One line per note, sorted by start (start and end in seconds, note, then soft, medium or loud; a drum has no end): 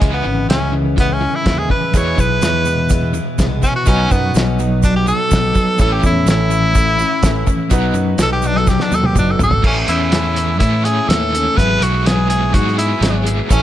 0.00 0.21 C#2 loud
0.00 0.25 C#3 medium
0.00 0.25 E3 medium
0.00 0.13 G#3 medium
0.00 0.25 G#3 medium
0.00 0.25 C#4 medium
0.00 0.23 E4 medium
0.00 kick loud
0.00 closed hi-hat medium
0.13 0.48 B3 medium
0.24 0.45 G#1 medium
0.24 0.47 C#3 medium
0.24 0.47 E3 medium
0.24 0.49 G#3 soft
0.24 0.49 C#4 soft
0.24 0.49 E4 medium
0.48 1.26 C#2 loud
0.48 0.97 C#3 medium
0.48 0.96 E3 medium
0.48 0.98 G#3 medium
0.48 0.73 C#4 medium
0.48 0.98 C#4 medium
0.48 0.99 E4 medium
0.48 snare loud
0.48 closed hi-hat medium
0.73 0.95 C#3 medium
0.73 0.95 E3 medium
0.97 1.19 C#3 medium
0.97 1.21 E3 medium
0.97 1.22 G#3 medium
0.97 1.15 B3 loud
0.97 1.21 C#4 medium
0.97 1.19 E4 medium
0.97 kick loud
0.97 closed hi-hat medium
1.13 1.37 C#4 medium
1.21 1.43 C#3 medium
1.21 1.43 E3 medium
1.21 1.45 G#3 soft
1.21 1.45 C#4 soft
1.21 1.45 E4 soft
1.35 1.60 E4 medium
1.45 1.65 D#2 medium
1.45 1.70 C#3 medium
1.45 1.70 E3 medium
1.45 1.70 G#3 medium
1.45 1.70 C#4 medium
1.45 1.69 E4 medium
1.45 kick medium
1.45 snare loud
1.45 closed hi-hat medium
1.59 1.70 G#4 medium
1.70 1.91 C#3 medium
1.70 1.91 E3 medium
1.70 1.93 G#3 soft
1.70 1.95 C#4 soft
1.70 1.94 E4 medium
1.70 1.98 B4 medium
1.70 kick medium
1.93 2.18 E2 medium
1.93 2.13 E2 loud
1.93 2.18 B2 medium
1.93 2.18 E3 medium
1.93 2.18 G#3 medium
1.93 2.17 B3 medium
1.93 3.83 E4 medium
1.93 2.16 E4 medium
1.93 3.83 G#4 medium
1.93 3.83 B4 medium
1.93 2.21 C#5 loud
1.93 kick loud
1.93 closed hi-hat medium
1.93 shaker medium
2.17 2.37 B1 loud
2.17 2.40 E2 medium
2.17 2.40 B2 medium
2.17 2.42 E3 soft
2.17 2.42 G#3 soft
2.17 2.42 B3 soft
2.17 2.42 E4 medium
2.17 3.12 B4 loud
2.17 kick medium
2.17 shaker medium
2.41 3.19 E2 loud
2.41 2.90 E2 medium
2.41 2.90 B2 medium
2.41 2.88 E3 medium
2.41 2.89 G#3 medium
2.41 2.91 B3 medium
2.41 2.91 E4 medium
2.41 snare loud
2.41 closed hi-hat medium
2.41 shaker medium
2.65 2.88 E2 medium
2.65 2.88 B2 medium
2.65 shaker medium
2.89 3.12 E2 medium
2.89 3.12 B2 medium
2.89 3.14 E3 medium
2.89 3.14 G#3 medium
2.89 3.13 B3 medium
2.89 3.12 E4 medium
2.89 kick loud
2.89 closed hi-hat medium
2.89 shaker medium
3.13 3.36 E2 medium
3.13 3.36 B2 medium
3.13 3.39 E3 medium
3.13 3.39 G#3 soft
3.13 3.38 B3 medium
3.13 3.38 E4 medium
3.13 shaker medium
3.38 3.58 C2 medium
3.38 3.62 E2 medium
3.38 3.63 B2 medium
3.38 3.63 E3 medium
3.38 3.63 G#3 medium
3.38 3.62 B3 medium
3.38 3.61 E4 medium
3.38 kick medium
3.38 snare loud
3.38 closed hi-hat medium
3.38 shaker medium
3.62 3.84 E2 medium
3.62 3.84 B2 medium
3.62 3.87 E3 soft
3.62 3.87 G#3 soft
3.62 3.86 B3 medium
3.62 3.74 C#4 loud
3.62 3.86 E4 soft
3.62 kick medium
3.62 shaker medium
3.75 3.89 F#4 loud
3.86 4.06 B1 loud
3.86 4.11 B2 medium
3.86 4.11 F#3 medium
3.86 4.11 B3 medium
3.86 4.13 C#4 loud
3.86 5.75 D#4 medium
3.86 4.12 D#4 medium
3.86 5.75 F#4 medium
3.86 4.10 F#4 medium
3.86 5.76 B4 medium
3.86 kick loud
3.86 closed hi-hat medium
3.86 shaker medium
4.10 4.30 F#2 medium
4.10 4.32 B2 medium
4.10 4.32 F#3 medium
4.10 4.34 B3 loud
4.10 4.35 B3 soft
4.10 4.35 D#4 medium
4.10 4.35 F#4 medium
4.10 kick medium
4.10 shaker medium
4.34 5.12 B1 loud
4.34 4.83 B2 medium
4.34 4.81 F#3 medium
4.34 4.82 B3 medium
4.34 4.83 D#4 medium
4.34 4.84 F#4 medium
4.34 snare loud
4.34 closed hi-hat medium
4.34 shaker medium
4.59 4.81 B2 medium
4.59 4.81 F#3 medium
4.59 shaker medium
4.82 5.04 B2 medium
4.82 5.06 F#3 medium
4.82 5.07 B3 medium
4.82 4.95 D4 loud
4.82 5.08 D#4 medium
4.82 5.06 F#4 medium
4.82 kick loud
4.82 closed hi-hat medium
4.82 shaker medium
4.96 5.07 G4 medium
5.06 5.28 B2 medium
5.06 5.28 F#3 medium
5.06 5.32 D#4 soft
5.06 5.31 F#4 soft
5.06 5.77 A4 loud
5.06 shaker medium
5.10 5.31 B3 soft
5.31 5.51 B1 medium
5.31 5.55 B2 medium
5.31 5.55 F#3 medium
5.31 5.56 B3 medium
5.31 5.56 D#4 medium
5.31 5.54 F#4 medium
5.31 kick medium
5.31 snare loud
5.31 closed hi-hat medium
5.31 shaker medium
5.54 5.76 B2 medium
5.54 5.76 F#3 medium
5.54 5.80 D#4 soft
5.54 5.79 F#4 soft
5.54 kick medium
5.54 shaker medium
5.59 5.80 B3 soft
5.78 5.98 A1 loud
5.78 6.03 A2 medium
5.78 6.04 E3 medium
5.78 6.04 A3 medium
5.78 7.68 C#4 medium
5.78 6.04 C#4 medium
5.78 7.68 E4 medium
5.78 6.02 E4 medium
5.78 7.68 A4 medium
5.78 5.94 A4 loud
5.78 kick loud
5.78 closed hi-hat medium
5.78 shaker medium
5.92 6.03 G4 medium
6.03 6.23 E2 loud
6.03 6.25 A2 medium
6.03 6.25 E3 medium
6.03 6.27 A3 soft
6.03 6.27 C#4 medium
6.03 6.27 E4 medium
6.03 6.28 E4 loud
6.03 kick medium
6.03 shaker medium
6.26 7.03 A1 loud
6.26 6.75 A2 medium
6.26 6.74 E3 medium
6.26 6.75 A3 medium
6.26 6.76 C#4 medium
6.26 6.76 E4 medium
6.26 7.69 E4 loud
6.26 snare loud
6.26 closed hi-hat medium
6.26 shaker medium
6.50 6.72 A2 medium
6.50 6.73 E3 medium
6.50 shaker medium
6.74 6.96 A2 medium
6.74 6.99 E3 medium
6.74 7.00 A3 medium
6.74 7.00 C#4 medium
6.74 6.98 E4 medium
6.74 kick loud
6.74 closed hi-hat medium
6.74 shaker medium
6.98 7.20 A2 medium
6.98 7.20 E3 medium
6.98 7.24 C#4 medium
6.98 7.23 E4 medium
6.98 shaker medium
7.02 7.24 A3 soft
7.23 7.42 A1 loud
7.23 7.47 A2 medium
7.23 7.48 E3 medium
7.23 7.48 A3 medium
7.23 7.47 C#4 medium
7.23 7.46 E4 loud
7.23 kick medium
7.23 snare loud
7.23 closed hi-hat medium
7.23 shaker medium
7.46 7.69 A2 medium
7.46 7.69 E3 medium
7.46 7.71 A3 medium
7.46 7.72 C#4 medium
7.46 7.71 E4 medium
7.46 kick medium
7.46 shaker medium
7.70 7.90 B1 loud
7.70 7.95 B2 medium
7.70 7.95 F#3 medium
7.70 7.96 B3 medium
7.70 9.60 D#4 medium
7.70 7.95 D#4 loud
7.70 9.60 F#4 medium
7.70 7.93 F#4 loud
7.70 9.61 B4 medium
7.70 kick loud
7.70 closed hi-hat medium
7.70 shaker loud
7.94 8.14 F#2 loud
7.94 8.17 B2 medium
7.94 8.17 F#3 medium
7.94 8.20 B3 medium
7.94 8.20 D#4 medium
7.94 8.19 F#4 medium
7.94 shaker medium
8.18 8.76 B1 loud
8.18 8.68 B2 medium
8.18 8.66 F#3 medium
8.18 8.67 B3 medium
8.18 8.69 D#4 medium
8.18 8.69 F#4 medium
8.18 snare loud
8.18 closed hi-hat medium
8.18 shaker medium
8.23 8.32 A4 loud
8.32 8.48 G4 medium
8.42 8.65 B2 medium
8.42 8.65 F#3 medium
8.42 shaker medium
8.47 8.59 D4 loud
8.56 8.70 A4 loud
8.56 snare soft
8.67 8.89 B2 medium
8.67 8.91 F#3 medium
8.67 8.92 B3 medium
8.67 8.92 D#4 medium
8.67 8.90 F#4 medium
8.67 8.83 G4 medium
8.67 kick loud
8.67 snare medium
8.67 shaker medium
8.80 8.96 D4 loud
8.80 snare medium
8.90 9.13 D#2 medium
8.90 9.13 B2 medium
8.90 9.13 F#3 medium
8.90 9.16 D#4 soft
8.90 9.16 F#4 medium
8.90 shaker medium
8.95 9.16 B3 soft
8.95 9.07 A4 medium
9.04 9.16 G4 medium
9.04 high tom medium
9.16 9.38 F#1 medium
9.16 9.40 B2 medium
9.16 9.41 F#3 medium
9.16 9.41 B3 medium
9.16 9.33 D4 loud
9.16 9.39 D#4 medium
9.16 9.38 F#4 medium
9.16 kick medium
9.16 mid tom medium
9.16 shaker medium
9.31 9.41 A4 medium
9.39 9.62 G#1 medium
9.39 9.61 B2 medium
9.39 9.61 F#3 medium
9.39 9.64 B3 soft
9.39 9.64 D#4 soft
9.39 9.63 F#4 medium
9.39 floor tom medium
9.39 shaker medium
9.43 9.65 A4 loud
9.51 floor tom medium
9.64 9.83 A1 medium
9.64 9.88 A2 medium
9.64 9.88 E3 medium
9.64 9.89 A3 medium
9.64 9.88 C#4 medium
9.64 9.77 C#4 medium
9.64 9.86 E4 medium
9.64 10.60 A4 medium
9.64 kick loud
9.64 crash loud
9.88 10.61 E2 medium
9.88 10.13 A3 soft
9.88 10.13 C#4 medium
9.88 10.12 E4 medium
9.88 10.57 E4 medium
9.88 closed hi-hat medium
10.12 10.61 A2 medium
10.12 10.59 E3 medium
10.12 10.60 A3 medium
10.12 10.61 C#4 medium
10.12 10.63 E4 medium
10.12 snare loud
10.12 closed hi-hat medium
10.36 closed hi-hat medium
10.59 11.55 A2 medium
10.59 10.99 A2 loud
10.59 10.84 E3 medium
10.59 10.85 A3 medium
10.59 10.86 C#4 medium
10.59 10.86 E4 medium
10.59 10.84 E4 medium
10.59 11.57 A4 medium
10.59 kick loud
10.59 closed hi-hat medium
10.85 11.08 A3 soft
10.85 11.09 C#4 soft
10.85 11.09 E4 medium
10.85 11.10 G#4 loud
10.85 closed hi-hat medium
11.08 11.47 D#2 medium
11.08 11.33 A2 medium
11.08 11.33 E3 medium
11.08 11.33 A3 medium
11.08 11.34 C#4 medium
11.08 11.31 E4 medium
11.08 11.59 A4 loud
11.08 snare loud
11.08 closed hi-hat loud
11.32 11.58 A3 soft
11.32 11.58 C#4 medium
11.32 11.57 E4 medium
11.32 closed hi-hat medium
11.56 11.77 G#1 loud
11.56 11.81 G#2 medium
11.56 11.81 E3 medium
11.56 11.81 F#3 medium
11.56 12.52 G#3 medium
11.56 11.82 B3 medium
11.56 11.80 E4 medium
11.56 11.80 G#4 medium
11.56 11.84 B4 loud
11.56 kick loud
11.56 closed hi-hat medium
11.80 12.56 B1 medium
11.80 12.05 F#3 soft
11.80 12.05 B3 soft
11.80 12.06 E4 medium
11.80 12.08 F#4 medium
11.80 12.05 G#4 medium
11.80 closed hi-hat medium
12.05 12.54 G#2 medium
12.05 12.56 E3 medium
12.05 12.52 F#3 medium
12.05 12.53 B3 medium
12.05 12.55 E4 medium
12.05 12.29 G#4 loud
12.05 12.55 G#4 medium
12.05 snare loud
12.05 closed hi-hat medium
12.29 12.55 G#4 medium
12.29 closed hi-hat medium
12.53 12.93 G#2 loud
12.53 12.78 F#3 medium
12.53 13.48 G#3 medium
12.53 12.78 B3 medium
12.53 12.78 E4 medium
12.53 12.77 F#4 medium
12.53 12.76 G#4 medium
12.53 kick loud
12.53 closed hi-hat medium
12.68 snare soft
12.78 13.00 F#3 soft
12.78 13.01 B3 soft
12.78 13.23 E4 medium
12.78 13.01 E4 soft
12.78 13.01 G#4 medium
12.78 closed hi-hat medium
13.00 13.40 G#1 medium
13.00 13.25 G#2 medium
13.00 13.26 E3 medium
13.00 13.26 F#3 medium
13.00 13.25 B3 medium
13.00 13.24 E4 medium
13.00 13.23 G#4 medium
13.00 snare loud
13.00 closed hi-hat medium
13.24 13.50 F#3 soft
13.24 13.51 B3 medium
13.24 13.50 E4 soft
13.24 13.49 G#4 medium
13.24 closed hi-hat medium
13.49 13.62 A1 loud
13.49 13.62 A2 medium
13.49 13.62 E3 medium
13.49 13.62 A3 medium
13.49 13.62 C#4 medium
13.49 13.62 E4 medium
13.49 13.62 A4 medium
13.49 kick loud
13.49 closed hi-hat loud
13.49 shaker medium